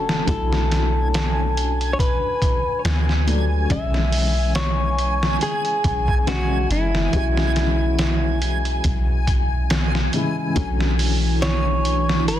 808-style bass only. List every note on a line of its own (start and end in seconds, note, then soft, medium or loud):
0.00 0.23 F#1 loud
0.28 1.95 B1 loud
2.85 3.67 D2 medium
3.70 5.38 B1 loud
5.85 6.67 B1 medium
6.70 7.08 F#1 medium
7.13 8.81 B1 loud
8.85 10.09 B1 medium
10.56 12.29 B1 loud
12.27 12.40 F#1 loud